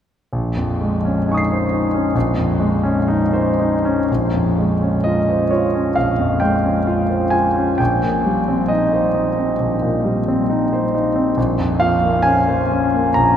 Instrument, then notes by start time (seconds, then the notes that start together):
grand piano
0.33 A#1
0.57 F2
0.81 G#3
1.05 C#4
1.28 D#4 G#5 C#6
1.34 D#6 C7
1.51 C5
1.72 D#4
1.94 C#4
2.15 A#1
2.37 F2
2.60 G#3
2.83 C#4
3.08 D#4
3.33 C5
3.59 D#4
3.85 C#4
4.11 A#1
4.34 F2
4.58 G#3
4.82 C#4
5.04 F4 D#5
5.30 C5
5.50 F4 C#5
5.75 C#4
5.96 A#1 F5
6.19 F2
6.40 G#3 G5
6.63 C#4
6.87 F4
7.09 C5
7.30 F4 G#5
7.55 C#4
7.78 A#1 G5
8.03 A#2
8.26 G3
8.48 C4
8.68 D#4 D#5
8.93 C5
9.15 D#4
9.38 C4
9.60 A#1
9.82 A#2
10.04 G3
10.28 C4
10.50 D#4
10.73 C5
10.94 D#4
11.16 C4
11.37 A#1
11.59 F2
11.80 F3 F5
12.03 A#3
12.22 C#4 G#5
12.47 C5
12.71 C#4
12.94 A#3
13.14 A#1 A#5